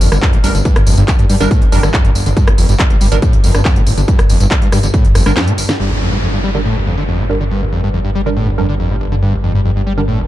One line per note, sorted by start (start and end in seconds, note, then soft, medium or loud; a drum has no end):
0.00 0.08 G1 loud
0.00 0.10 F2 medium
0.00 5.78 G2 medium
0.00 open hi-hat loud
0.00 tambourine medium
0.12 0.19 G1 loud
0.12 0.18 D3 medium
0.12 cross-stick loud
0.12 closed hi-hat medium
0.12 tambourine soft
0.22 0.35 F2 medium
0.22 kick loud
0.22 clap loud
0.33 0.40 G1 medium
0.33 0.39 A#2 medium
0.33 closed hi-hat soft
0.44 0.50 G1 medium
0.44 0.51 A1 loud
0.44 0.54 G3 medium
0.44 0.54 D4 medium
0.44 0.54 A#4 loud
0.44 open hi-hat loud
0.44 tambourine medium
0.55 0.61 G1 medium
0.55 0.58 D3 medium
0.55 closed hi-hat soft
0.55 tambourine soft
0.65 0.77 G2 loud
0.65 kick loud
0.65 closed hi-hat medium
0.76 0.80 G1 loud
0.76 0.83 G1 medium
0.76 cross-stick loud
0.76 closed hi-hat medium
0.87 0.94 G1 loud
0.87 0.96 F2 medium
0.87 open hi-hat loud
0.87 tambourine medium
0.98 1.04 G1 loud
0.98 1.03 G2 loud
0.98 closed hi-hat medium
0.98 tambourine soft
1.08 1.14 F2 medium
1.08 kick loud
1.08 clap loud
1.08 closed hi-hat medium
1.08 tambourine soft
1.19 1.25 G2 medium
1.19 1.26 G2 medium
1.19 closed hi-hat soft
1.30 1.37 G2 loud
1.30 1.36 G3 medium
1.30 open hi-hat loud
1.30 tambourine medium
1.40 1.47 G1 loud
1.40 1.44 D3 medium
1.40 1.50 G3 loud
1.40 1.50 D4 medium
1.40 1.50 A#4 loud
1.40 closed hi-hat soft
1.40 tambourine soft
1.51 1.63 A2 loud
1.51 kick loud
1.51 closed hi-hat medium
1.51 tambourine soft
1.62 1.65 G1 loud
1.62 1.69 G1 medium
1.62 closed hi-hat medium
1.72 1.79 G1 loud
1.72 1.81 F2 medium
1.72 1.82 G3 medium
1.72 1.82 D4 medium
1.72 1.82 A#4 loud
1.72 open hi-hat loud
1.72 tambourine medium
1.83 1.90 G1 loud
1.83 1.89 D3 medium
1.83 cross-stick loud
1.83 closed hi-hat medium
1.83 tambourine soft
1.94 2.06 F2 medium
1.94 kick loud
1.94 clap loud
1.94 tambourine soft
2.05 2.12 F1 medium
2.05 2.10 A#2 medium
2.05 closed hi-hat medium
2.15 2.21 G1 medium
2.15 2.22 G1 loud
2.15 open hi-hat loud
2.15 tambourine medium
2.26 2.33 G1 loud
2.26 2.30 D3 medium
2.26 closed hi-hat soft
2.26 tambourine soft
2.37 2.49 G2 loud
2.37 kick loud
2.37 closed hi-hat medium
2.37 tambourine soft
2.48 2.51 G1 loud
2.48 2.54 G1 medium
2.48 cross-stick loud
2.48 closed hi-hat medium
2.58 2.65 G1 loud
2.58 2.67 F2 medium
2.58 open hi-hat loud
2.58 tambourine medium
2.69 2.76 G1 loud
2.69 2.75 G2 loud
2.69 closed hi-hat medium
2.69 tambourine soft
2.79 2.85 F2 medium
2.79 kick loud
2.79 clap loud
2.79 closed hi-hat medium
2.90 2.97 G1 medium
2.90 2.96 G2 medium
2.90 closed hi-hat soft
3.01 3.08 G1 loud
3.01 3.07 G3 medium
3.01 open hi-hat loud
3.01 tambourine medium
3.12 3.19 G1 loud
3.12 3.15 D3 medium
3.12 3.18 G3 medium
3.12 3.18 D4 medium
3.12 3.18 A#4 medium
3.12 closed hi-hat medium
3.12 tambourine soft
3.22 3.35 A2 loud
3.22 kick loud
3.22 closed hi-hat medium
3.22 tambourine soft
3.33 3.40 G1 medium
3.33 3.37 G1 loud
3.33 closed hi-hat medium
3.44 3.51 G1 loud
3.44 3.53 F2 medium
3.44 open hi-hat loud
3.44 tambourine medium
3.55 3.61 G1 loud
3.55 3.60 D3 medium
3.55 cross-stick medium
3.55 closed hi-hat medium
3.55 tambourine soft
3.65 3.78 F2 medium
3.65 kick loud
3.65 clap loud
3.65 tambourine soft
3.76 3.83 G1 medium
3.76 3.82 A#2 medium
3.76 closed hi-hat medium
3.87 3.93 G1 medium
3.87 3.94 A1 loud
3.87 open hi-hat loud
3.87 tambourine medium
3.97 4.04 G1 loud
3.97 4.01 D3 medium
3.97 closed hi-hat medium
3.97 tambourine soft
4.08 4.20 G2 loud
4.08 kick loud
4.08 closed hi-hat medium
4.08 tambourine soft
4.19 4.26 G1 medium
4.19 4.22 G1 loud
4.19 cross-stick medium
4.19 closed hi-hat medium
4.29 4.36 G1 loud
4.29 4.38 F2 medium
4.29 open hi-hat loud
4.29 tambourine medium
4.40 4.47 G1 loud
4.40 4.46 G2 loud
4.40 closed hi-hat medium
4.40 tambourine soft
4.51 4.57 F2 medium
4.51 kick loud
4.51 clap loud
4.51 closed hi-hat medium
4.62 4.69 G2 medium
4.62 4.68 G2 medium
4.62 closed hi-hat medium
4.72 4.79 G2 loud
4.72 4.78 G3 medium
4.72 cross-stick medium
4.72 open hi-hat loud
4.72 tambourine medium
4.83 4.90 G1 medium
4.83 4.87 D3 medium
4.83 closed hi-hat medium
4.83 tambourine soft
4.94 5.06 A2 loud
4.94 kick loud
4.94 closed hi-hat medium
4.94 tambourine soft
5.05 5.08 G1 loud
5.05 5.11 G1 medium
5.05 closed hi-hat medium
5.15 5.22 G1 loud
5.15 5.24 F2 medium
5.15 cross-stick medium
5.15 open hi-hat loud
5.15 tambourine medium
5.26 5.33 G1 loud
5.26 5.32 D3 medium
5.26 5.32 G3 medium
5.26 5.32 D4 medium
5.26 5.32 A#4 medium
5.26 cross-stick medium
5.26 closed hi-hat medium
5.26 tambourine soft
5.37 5.49 F2 medium
5.37 snare loud
5.37 clap loud
5.37 tambourine soft
5.47 5.53 A#2 medium
5.47 closed hi-hat medium
5.58 5.64 G1 medium
5.58 open hi-hat loud
5.58 tambourine medium
5.69 5.72 D3 medium
5.69 snare medium
5.69 tambourine soft
5.79 10.27 G1 medium
5.79 5.92 G2 loud
5.79 10.27 G2 medium
5.79 downlifter medium
5.90 5.94 G1 loud
6.01 6.10 F2 medium
6.12 6.18 G2 loud
6.22 6.28 F2 medium
6.33 6.39 G2 medium
6.44 6.50 G3 medium
6.55 6.58 D3 medium
6.55 6.61 G3 medium
6.55 6.61 D4 medium
6.55 6.61 A#4 medium
6.65 6.78 A2 loud
6.76 6.80 G1 loud
6.87 6.96 F2 medium
6.98 7.03 D3 medium
7.08 7.21 F2 medium
7.19 7.25 A#2 medium
7.29 7.35 G1 medium
7.29 7.39 G3 medium
7.29 7.39 D4 medium
7.29 7.39 A#4 medium
7.40 7.44 D3 medium
7.51 7.63 G2 loud
7.62 7.65 G1 medium
7.72 7.81 F2 medium
7.83 7.89 G2 loud
7.94 8.00 F2 medium
8.05 8.10 G2 medium
8.15 8.21 G3 medium
8.26 8.30 D3 medium
8.26 8.36 G3 medium
8.26 8.36 D4 medium
8.26 8.36 A#4 loud
8.37 8.49 A2 loud
8.47 8.51 G1 loud
8.58 8.67 F2 medium
8.58 8.68 G3 medium
8.58 8.68 D4 medium
8.58 8.68 A#4 loud
8.69 8.75 D3 medium
8.79 8.92 F2 medium
8.90 8.96 A#2 medium
9.01 9.07 G1 medium
9.12 9.15 D3 medium
9.22 9.35 G2 loud
9.33 9.37 G1 loud
9.44 9.53 F2 medium
9.55 9.60 G2 loud
9.65 9.71 F2 medium
9.76 9.82 G2 medium
9.87 9.93 G3 medium
9.97 10.01 D3 medium
9.97 10.03 G3 medium
9.97 10.04 D4 medium
9.97 10.03 A#4 medium
10.08 10.20 A2 loud
10.19 10.22 G1 loud